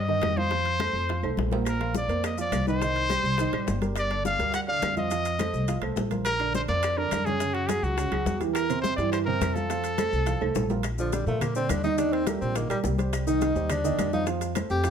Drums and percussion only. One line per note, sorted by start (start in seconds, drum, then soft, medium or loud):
0.08 high bongo soft
0.08 high conga soft
0.22 high bongo medium
0.22 low bongo medium
0.22 high conga medium
0.22 high timbale medium
0.22 low timbale medium
0.22 claves medium
0.37 high bongo soft
0.37 high conga medium
0.51 high bongo medium
0.51 high timbale medium
0.65 high conga soft
0.65 high timbale medium
0.80 high bongo medium
0.80 high conga medium
0.80 high timbale medium
0.80 claves medium
0.94 high bongo soft
0.94 high conga soft
1.09 high bongo medium
1.09 high conga soft
1.09 high timbale medium
1.22 high bongo soft
1.22 high conga soft
1.22 high timbale medium
1.22 claves medium
1.37 high bongo medium
1.37 low bongo medium
1.37 high conga medium
1.51 high bongo soft
1.51 high conga medium
1.51 low timbale medium
1.65 high bongo medium
1.65 high conga soft
1.65 high timbale medium
1.65 claves medium
1.65 maracas medium
1.81 high bongo soft
1.81 high conga soft
1.81 high timbale medium
1.95 high bongo medium
1.95 high conga medium
1.95 maracas medium
2.09 high conga soft
2.09 high timbale medium
2.09 maracas soft
2.24 high bongo medium
2.24 high conga soft
2.24 high timbale medium
2.24 claves medium
2.24 maracas medium
2.38 high bongo soft
2.38 high conga soft
2.38 maracas medium
2.52 high bongo medium
2.52 low bongo medium
2.52 high conga medium
2.52 high timbale medium
2.52 low timbale medium
2.52 claves medium
2.52 maracas medium
2.67 high bongo soft
2.67 high conga medium
2.67 maracas soft
2.82 high bongo medium
2.82 high timbale medium
2.82 maracas medium
2.96 high conga soft
2.96 high timbale medium
3.10 high bongo medium
3.10 high conga medium
3.10 high timbale medium
3.10 claves medium
3.10 maracas medium
3.24 high bongo soft
3.24 high conga soft
3.24 maracas soft
3.38 high bongo medium
3.38 high conga soft
3.38 high timbale medium
3.38 maracas medium
3.53 high bongo soft
3.53 high conga soft
3.53 high timbale medium
3.53 claves medium
3.67 high bongo medium
3.67 low bongo medium
3.67 high conga medium
3.67 low timbale medium
3.67 maracas medium
3.82 high bongo soft
3.82 high conga medium
3.82 high timbale medium
3.82 maracas soft
3.96 high bongo medium
3.96 high conga soft
3.96 high timbale medium
3.96 claves medium
3.96 maracas medium
4.10 high bongo soft
4.10 high conga soft
4.10 high timbale medium
4.25 high bongo medium
4.25 high conga medium
4.25 maracas medium
4.40 high conga soft
4.40 high timbale medium
4.40 maracas soft
4.54 high bongo medium
4.54 high conga soft
4.54 high timbale medium
4.54 claves medium
4.54 maracas medium
4.68 high bongo soft
4.68 high conga soft
4.82 high bongo medium
4.82 low bongo medium
4.82 high conga medium
4.82 high timbale medium
4.82 low timbale medium
4.82 claves medium
4.82 maracas medium
4.97 high bongo soft
4.97 high conga medium
4.97 maracas soft
5.11 high bongo medium
5.11 high conga soft
5.11 high timbale medium
5.11 maracas medium
5.25 high conga soft
5.25 high timbale medium
5.25 maracas medium
5.39 high bongo medium
5.39 high conga medium
5.39 high timbale medium
5.39 claves medium
5.39 maracas medium
5.54 high bongo soft
5.54 high conga soft
5.54 maracas soft
5.68 high bongo medium
5.68 high conga soft
5.68 high timbale medium
5.68 maracas medium
5.82 high bongo soft
5.82 high conga soft
5.82 high timbale medium
5.82 claves medium
5.96 high bongo medium
5.96 low bongo medium
5.96 high conga medium
5.96 low timbale medium
5.96 maracas medium
6.11 high bongo soft
6.11 high conga medium
6.11 high timbale medium
6.11 maracas soft
6.25 high bongo medium
6.25 high conga soft
6.25 high timbale medium
6.25 claves medium
6.25 maracas medium
6.40 high bongo soft
6.40 high conga soft
6.40 high timbale medium
6.55 high bongo medium
6.55 high conga medium
6.55 maracas medium
6.68 high conga soft
6.68 high timbale medium
6.68 maracas soft
6.83 high bongo medium
6.83 high conga soft
6.83 high timbale loud
6.83 claves medium
6.83 maracas medium
6.98 high bongo soft
6.98 high conga soft
7.11 high bongo medium
7.11 low bongo medium
7.11 high conga medium
7.11 high timbale medium
7.11 claves medium
7.11 maracas medium
7.26 high bongo soft
7.26 high conga medium
7.26 maracas soft
7.40 high bongo medium
7.40 high conga soft
7.40 high timbale medium
7.40 maracas medium
7.55 high conga soft
7.55 high timbale medium
7.69 high bongo medium
7.69 high conga medium
7.69 high timbale medium
7.69 claves medium
7.69 maracas medium
7.83 high bongo soft
7.83 high conga soft
7.83 maracas soft
7.98 high bongo medium
7.98 high conga soft
7.98 high timbale medium
7.98 maracas medium
8.12 high bongo soft
8.12 high conga soft
8.12 high timbale medium
8.12 claves medium
8.26 high bongo medium
8.26 low bongo medium
8.26 high conga medium
8.26 maracas medium
8.41 high bongo soft
8.41 high conga medium
8.41 high timbale medium
8.41 maracas soft
8.55 high bongo medium
8.55 high conga soft
8.55 high timbale medium
8.55 claves medium
8.55 maracas medium
8.69 high bongo soft
8.69 high conga soft
8.69 high timbale medium
8.69 maracas medium
8.84 high bongo medium
8.84 high conga medium
8.84 maracas medium
8.98 high conga soft
8.98 high timbale medium
8.98 maracas soft
9.13 high bongo medium
9.13 high conga soft
9.13 high timbale medium
9.13 claves medium
9.13 maracas medium
9.27 high bongo soft
9.27 high conga soft
9.41 high bongo medium
9.41 low bongo medium
9.41 high conga medium
9.41 high timbale medium
9.41 claves medium
9.41 maracas medium
9.56 high bongo soft
9.56 high conga medium
9.56 maracas soft
9.70 high bongo medium
9.70 high conga soft
9.70 high timbale medium
9.70 maracas medium
9.84 high conga soft
9.84 high timbale medium
9.84 maracas medium
9.98 high bongo medium
9.98 high conga medium
9.98 high timbale medium
9.98 claves medium
9.98 maracas medium
10.13 high bongo soft
10.13 high conga soft
10.13 maracas soft
10.26 high bongo medium
10.26 high conga soft
10.26 high timbale medium
10.26 maracas medium
10.41 high bongo soft
10.41 high conga soft
10.41 high timbale medium
10.41 claves medium
10.55 high bongo medium
10.55 low bongo medium
10.55 high conga medium
10.55 high timbale medium
10.55 maracas medium
10.70 high bongo soft
10.70 high conga medium
10.70 low timbale medium
10.70 maracas soft
10.83 high bongo medium
10.83 high timbale medium
10.83 claves medium
10.83 maracas medium
10.98 high bongo soft
10.98 high conga soft
10.98 maracas medium
11.12 high bongo medium
11.12 high conga medium
11.12 high timbale medium
11.12 low timbale medium
11.12 maracas medium
11.27 maracas soft
11.41 high bongo medium
11.41 high conga soft
11.41 low conga medium
11.41 high timbale loud
11.41 claves medium
11.41 maracas medium
11.55 high bongo soft
11.55 high conga soft
11.55 maracas medium
11.69 high bongo soft
11.69 low bongo medium
11.69 high conga medium
11.69 high timbale medium
11.69 low timbale medium
11.69 claves medium
11.69 maracas medium
11.84 high bongo soft
11.84 high conga medium
11.84 maracas soft
11.98 high bongo medium
11.98 high timbale medium
11.98 maracas medium
12.13 high bongo soft
12.13 high conga soft
12.13 high timbale medium
12.27 high bongo medium
12.27 high conga medium
12.27 high timbale medium
12.27 low timbale medium
12.27 claves medium
12.27 maracas medium
12.42 high conga soft
12.42 maracas soft
12.55 high bongo medium
12.55 high conga soft
12.55 high timbale medium
12.55 maracas medium
12.70 high bongo soft
12.70 high conga soft
12.70 high timbale medium
12.70 claves medium
12.70 maracas medium
12.84 high bongo soft
12.84 low bongo medium
12.84 high conga medium
12.84 low timbale medium
12.84 maracas medium
12.98 high bongo soft
12.98 high conga medium
12.98 high timbale medium
12.98 maracas soft
13.13 high bongo medium
13.13 high timbale medium
13.13 claves medium
13.13 maracas medium
13.27 high bongo soft
13.27 high conga soft
13.27 maracas medium
13.41 high bongo medium
13.41 high conga medium
13.41 high timbale medium
13.41 low timbale medium
13.41 maracas medium
13.56 maracas soft
13.70 high bongo medium
13.70 high conga soft
13.70 low conga medium
13.70 high timbale loud
13.70 claves medium
13.70 maracas medium
13.84 high bongo soft
13.84 high conga soft
13.84 low conga medium
13.84 maracas medium
13.99 high bongo soft
13.99 low bongo medium
13.99 high conga medium
13.99 high timbale medium
13.99 low timbale medium
13.99 claves medium
13.99 maracas medium
14.13 high bongo soft
14.13 high conga medium
14.13 maracas soft
14.27 high bongo medium
14.27 high conga soft
14.27 high timbale medium
14.27 maracas medium
14.41 high bongo soft
14.41 high conga soft
14.41 high timbale medium
14.41 maracas medium
14.55 high bongo medium
14.55 high conga medium
14.55 high timbale loud
14.55 low timbale medium
14.55 claves medium
14.55 maracas medium
14.70 high conga soft
14.70 maracas soft
14.84 high bongo medium
14.84 high conga soft
14.84 high timbale medium
14.84 maracas medium